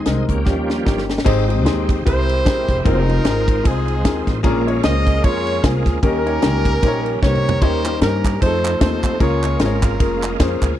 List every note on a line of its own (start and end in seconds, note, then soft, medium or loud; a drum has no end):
0.00 0.25 D#3 medium
0.00 0.26 D#4 medium
0.00 0.26 G#4 medium
0.00 0.25 C5 loud
0.06 0.26 C2 medium
0.06 0.37 G#3 medium
0.06 0.37 C4 medium
0.06 0.37 D#4 medium
0.06 0.37 A#4 medium
0.06 snare medium
0.06 closed hi-hat medium
0.29 0.43 C#2 medium
0.29 1.06 A#3 medium
0.29 0.45 C#4 medium
0.29 1.05 G4 medium
0.29 kick medium
0.29 closed hi-hat medium
0.45 0.80 D#2 medium
0.45 1.05 D#3 medium
0.45 1.05 F3 soft
0.45 1.06 G3 soft
0.45 0.77 A#3 medium
0.45 0.77 C#4 medium
0.45 1.06 C#4 medium
0.45 0.77 D#4 medium
0.45 0.77 G4 medium
0.45 kick loud
0.45 snare medium
0.70 snare medium
0.85 1.20 G1 medium
0.85 1.17 A#3 medium
0.85 1.17 C#4 medium
0.85 1.17 D#4 medium
0.85 1.17 G4 medium
0.85 kick loud
0.85 snare medium
0.98 snare medium
1.10 snare medium
1.18 snare medium
1.25 1.65 G#1 loud
1.25 1.85 G#2 medium
1.25 2.04 G#3 medium
1.25 1.42 C4 loud
1.25 2.04 C4 medium
1.25 1.43 D#4 loud
1.25 2.04 D#4 medium
1.25 2.04 G4 medium
1.25 1.43 G4 loud
1.25 1.43 G#4 loud
1.25 2.04 C5 medium
1.25 1.43 C5 loud
1.25 kick loud
1.25 crash loud
1.48 1.61 C4 medium
1.48 1.61 D#4 medium
1.48 1.61 G4 medium
1.48 1.61 G#4 medium
1.48 1.61 C5 medium
1.48 ride medium
1.65 2.00 D#2 loud
1.65 1.96 C4 medium
1.65 1.97 D#4 medium
1.65 1.97 G4 medium
1.65 1.97 G#4 medium
1.65 1.97 C5 medium
1.65 snare loud
1.65 ride medium
1.89 kick loud
1.89 ride medium
2.05 2.46 C2 medium
2.05 2.65 C3 medium
2.05 2.84 G#3 medium
2.05 2.37 C4 medium
2.05 2.84 C4 medium
2.05 2.36 E4 medium
2.05 2.82 E4 medium
2.05 2.84 E4 medium
2.05 2.37 G4 medium
2.05 2.82 G4 medium
2.05 2.84 G4 medium
2.05 2.37 G#4 medium
2.05 2.37 A#4 medium
2.05 2.84 A#4 medium
2.05 2.82 C5 loud
2.05 kick loud
2.05 ride medium
2.29 ride medium
2.45 2.66 A#1 medium
2.45 2.76 C4 medium
2.45 2.76 E4 medium
2.45 2.76 G4 medium
2.45 2.76 G#4 medium
2.45 2.77 A#4 medium
2.45 kick loud
2.45 snare loud
2.45 ride medium
2.69 2.83 E1 medium
2.69 kick medium
2.69 ride medium
2.84 3.19 F1 loud
2.84 4.41 G#3 medium
2.84 3.02 C4 loud
2.84 4.41 C4 medium
2.84 3.02 D#4 medium
2.84 3.61 D#4 medium
2.84 4.41 D#4 medium
2.84 3.02 F4 medium
2.84 4.41 F4 medium
2.84 3.02 G#4 medium
2.84 3.65 A#4 loud
2.84 4.41 C5 medium
2.84 3.02 C5 loud
2.84 kick loud
2.84 ride medium
3.08 3.20 C4 medium
3.08 3.21 D#4 medium
3.08 3.21 F4 medium
3.08 3.21 G#4 medium
3.08 3.21 C5 medium
3.08 ride medium
3.24 3.59 G#1 loud
3.24 3.56 C4 medium
3.24 3.56 D#4 medium
3.24 3.56 F4 medium
3.24 3.31 G4 medium
3.24 3.56 A#4 medium
3.24 snare loud
3.24 ride medium
3.30 3.58 G#4 medium
3.48 kick loud
3.48 ride medium
3.63 4.05 C2 medium
3.63 3.95 C4 medium
3.63 4.41 C4 medium
3.63 3.95 D#4 medium
3.63 4.41 D#4 medium
3.63 3.95 F4 medium
3.63 3.96 G#4 medium
3.63 4.29 G#4 medium
3.63 3.96 C5 medium
3.63 kick loud
3.63 ride medium
3.88 ride medium
4.04 4.25 D#2 loud
4.04 4.35 C4 medium
4.04 4.36 D#4 medium
4.04 4.36 F4 medium
4.04 4.36 G#4 medium
4.04 4.36 A#4 medium
4.04 kick loud
4.04 snare loud
4.04 ride loud
4.27 4.42 A1 loud
4.27 kick medium
4.27 snare soft
4.27 ride medium
4.43 4.78 A#1 loud
4.43 5.03 A#2 medium
4.43 6.00 G#3 medium
4.43 4.61 A#3 loud
4.43 6.00 A#3 medium
4.43 4.61 C#4 loud
4.43 6.00 C#4 medium
4.43 4.61 F4 loud
4.43 6.00 F4 medium
4.43 4.61 G#4 loud
4.43 5.99 A#4 medium
4.43 4.61 A#4 loud
4.43 kick loud
4.43 ride medium
4.67 4.79 A#3 medium
4.67 4.80 C#4 medium
4.67 4.80 F4 medium
4.67 4.80 G#4 medium
4.67 4.80 C#5 medium
4.67 ride medium
4.83 5.18 C#2 loud
4.83 5.14 A#3 medium
4.83 5.15 C#4 medium
4.83 5.15 F4 medium
4.83 5.15 G#4 medium
4.83 5.24 G#4 medium
4.83 5.15 C5 medium
4.83 5.21 D#5 loud
4.83 snare loud
4.83 ride medium
5.07 kick medium
5.07 ride medium
5.23 5.58 F2 loud
5.23 5.54 A#3 medium
5.23 5.54 C#4 medium
5.23 5.55 F4 medium
5.23 5.64 F4 medium
5.23 5.55 G#4 medium
5.23 5.63 G#4 medium
5.23 5.55 C#5 medium
5.23 5.64 C#5 loud
5.23 kick loud
5.23 ride medium
5.47 ride medium
5.63 5.83 C2 loud
5.63 5.94 A#3 medium
5.63 5.94 C#4 medium
5.63 6.01 C#4 medium
5.63 5.94 F4 medium
5.63 6.01 F4 medium
5.63 5.94 G#4 medium
5.63 6.03 G#4 medium
5.63 5.95 C5 medium
5.63 kick loud
5.63 snare loud
5.63 ride medium
5.86 6.00 D2 medium
5.86 kick medium
5.86 snare soft
5.86 ride medium
6.02 6.37 D#2 loud
6.02 6.62 D#3 medium
6.02 6.09 F3 medium
6.02 6.20 A#3 medium
6.02 8.37 A#3 medium
6.02 6.20 C#4 medium
6.02 7.18 C#4 medium
6.02 8.37 C#4 medium
6.02 8.37 D#4 medium
6.02 6.20 D#4 medium
6.02 7.18 G4 medium
6.02 6.20 G4 medium
6.02 7.18 A#4 loud
6.02 8.37 A#4 medium
6.02 6.20 A#4 loud
6.02 kick loud
6.02 ride medium
6.07 8.39 G3 medium
6.26 6.38 A#3 medium
6.26 6.38 C#4 medium
6.26 6.38 D#4 medium
6.26 6.38 G4 medium
6.26 6.38 C#5 medium
6.26 ride medium
6.42 6.77 C#2 loud
6.42 6.73 A#3 medium
6.42 6.73 C#4 medium
6.42 6.74 D#4 medium
6.42 6.73 G4 medium
6.42 6.74 A#4 medium
6.42 snare loud
6.42 ride medium
6.65 kick loud
6.65 ride medium
6.82 7.16 A#1 loud
6.82 7.13 A#3 medium
6.82 7.13 C#4 medium
6.82 7.13 D#4 medium
6.82 7.13 G4 medium
6.82 6.88 C5 medium
6.82 kick loud
6.82 ride medium
6.88 7.16 C#5 medium
7.06 ride medium
7.22 7.56 C2 medium
7.22 7.53 A#3 medium
7.22 7.53 C#4 medium
7.22 7.53 D#4 medium
7.22 7.53 G4 medium
7.22 7.61 G4 medium
7.22 7.98 A#4 medium
7.22 7.28 B4 medium
7.22 7.62 C#5 loud
7.22 kick loud
7.22 snare medium
7.27 7.56 C5 medium
7.36 mid tom medium
7.49 floor tom loud
7.62 7.96 D#2 loud
7.62 8.21 D#3 medium
7.62 7.79 A#3 medium
7.62 7.79 C#4 medium
7.62 7.79 D#4 medium
7.62 8.02 G4 medium
7.62 7.79 G4 medium
7.62 8.01 C5 loud
7.62 7.79 C#5 loud
7.62 kick loud
7.62 ride medium
7.84 7.97 A#3 medium
7.84 7.97 C#4 medium
7.84 7.97 D#4 medium
7.84 7.97 G4 medium
7.84 7.97 C5 medium
7.84 clap loud
7.84 ride medium
8.01 8.35 G2 loud
8.01 8.32 A#3 medium
8.01 8.32 C#4 medium
8.01 8.39 C#4 medium
8.01 8.32 D#4 medium
8.01 8.32 G4 medium
8.01 8.39 G4 medium
8.01 8.39 A#4 loud
8.01 8.33 C5 medium
8.01 snare loud
8.01 ride medium
8.24 kick loud
8.24 clap loud
8.24 ride medium
8.41 8.75 F2 loud
8.41 9.18 F3 medium
8.41 8.72 A3 medium
8.41 9.19 A3 medium
8.41 9.18 C4 medium
8.41 8.72 C4 medium
8.41 9.19 D#4 medium
8.41 8.72 D#4 medium
8.41 8.81 D#4 medium
8.41 8.72 F4 medium
8.41 8.47 G#4 medium
8.41 9.18 A4 medium
8.41 8.81 A4 medium
8.41 8.79 C5 loud
8.41 kick loud
8.41 ride medium
8.46 8.74 A4 medium
8.65 snare soft
8.65 clap loud
8.65 ride medium
8.80 9.15 D#2 loud
8.80 9.11 A3 medium
8.80 9.11 C4 medium
8.80 9.11 D#4 medium
8.80 9.18 D#4 medium
8.80 9.11 F4 medium
8.80 9.18 A4 medium
8.80 8.86 A#4 medium
8.80 9.18 C5 medium
8.80 kick loud
8.80 snare loud
8.80 ride medium
8.86 9.14 C5 medium
9.03 kick medium
9.03 clap loud
9.03 ride medium
9.19 9.54 C#2 loud
9.19 9.79 C#3 medium
9.19 10.75 G#3 medium
9.19 10.75 A#3 medium
9.19 9.37 A#3 medium
9.19 10.75 C#4 medium
9.19 9.37 C#4 medium
9.19 10.75 F4 medium
9.19 9.37 F4 medium
9.19 9.59 F4 medium
9.19 9.38 G#4 medium
9.19 9.96 G#4 medium
9.19 10.75 A#4 medium
9.19 9.38 A#4 loud
9.19 9.61 C#5 loud
9.19 kick loud
9.19 ride medium
9.43 9.56 A#3 medium
9.43 9.56 C#4 medium
9.43 9.56 F4 medium
9.43 9.56 G#4 medium
9.43 9.56 C#5 medium
9.43 clap loud
9.43 ride medium
9.59 10.00 G#1 loud
9.59 9.90 A#3 medium
9.59 9.91 C#4 medium
9.59 9.91 F4 medium
9.59 10.35 F4 medium
9.59 9.91 G#4 medium
9.59 10.40 A#4 medium
9.59 9.66 C5 medium
9.59 snare loud
9.59 ride medium
9.65 9.93 C#5 medium
9.83 kick loud
9.83 clap loud
9.83 ride medium
9.99 10.33 F1 loud
9.99 10.30 A#3 medium
9.99 10.30 C#4 medium
9.99 10.30 F4 medium
9.99 10.31 G#4 medium
9.99 10.31 A#4 medium
9.99 kick loud
9.99 ride medium
10.22 10.38 D#5 medium
10.22 clap loud
10.22 ride medium
10.39 10.59 F2 loud
10.39 10.70 A#3 medium
10.39 10.70 C#4 medium
10.39 10.70 F4 medium
10.39 10.70 G#4 medium
10.39 10.70 C5 medium
10.39 10.60 F5 medium
10.39 kick loud
10.39 snare loud
10.39 ride loud
10.62 10.76 D2 loud
10.62 10.79 G#5 medium
10.62 kick medium
10.62 clap loud
10.62 ride medium